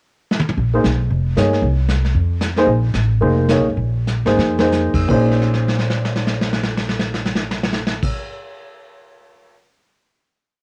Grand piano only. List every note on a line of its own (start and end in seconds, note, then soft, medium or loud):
0.74 0.83 A#3 medium
0.74 0.83 D#4 medium
0.74 0.84 G#4 medium
0.74 0.84 C5 medium
1.36 1.63 A#3 medium
1.36 1.63 D#4 medium
1.36 1.63 G#4 medium
1.36 1.63 C#5 medium
2.58 2.67 A#3 medium
2.58 2.67 D#4 medium
2.58 2.67 G#4 medium
2.58 2.67 C5 medium
3.21 3.48 A#3 medium
3.21 3.48 D#4 medium
3.21 3.48 G#4 medium
3.21 3.48 C5 medium
3.49 3.64 A#3 medium
3.49 3.65 D#4 medium
3.49 3.65 G#4 medium
3.49 3.65 C#5 medium
4.26 4.57 A#3 medium
4.26 4.57 D#4 medium
4.26 4.57 G#4 medium
4.26 4.57 C5 medium
4.59 5.06 A#3 medium
4.59 5.07 D#4 medium
4.59 5.07 G#4 medium
4.59 5.07 C5 medium
5.08 8.09 A#2 medium
5.08 8.09 A#3 medium
5.08 8.09 C#4 medium
5.08 8.09 D#4 medium
5.08 8.10 G#4 medium
5.08 8.10 C5 medium